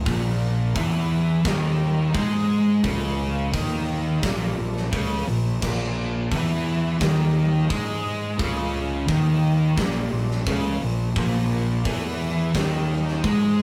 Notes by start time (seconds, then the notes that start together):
0.06 A#1 A#2, kick, open hi-hat
0.75 E2 E3, kick, open hi-hat
1.45 D#2 D#3, kick, snare, open hi-hat
2.14 G#2 G#3, kick, open hi-hat
2.84 C#2 C#3, kick, open hi-hat
3.53 D#2 D#3, kick, open hi-hat
4.23 A#1 A#2, kick, snare, open hi-hat
4.57 A#1 A#2
4.77 snare
4.93 C#2 C#3, kick, open hi-hat
5.27 A#1 A#2
5.62 A#1 A#2, kick, crash
6.31 E2 E3, kick, open hi-hat
7.00 D#2 D#3, kick, snare, open hi-hat
7.70 G#2 G#3, kick, open hi-hat
8.38 C#2 C#3, kick, open hi-hat
9.07 D#2 D#3, kick, open hi-hat
9.77 A#1 A#2, kick, snare, open hi-hat
10.11 A#1 A#2
10.31 snare
10.46 C#2 C#3, kick, open hi-hat
10.82 A#1 A#2
11.16 A#1 A#2, kick, open hi-hat
11.85 E2 E3, kick, open hi-hat
12.54 D#2 D#3, kick, snare, open hi-hat
13.08 snare
13.24 G#2 G#3, kick, open hi-hat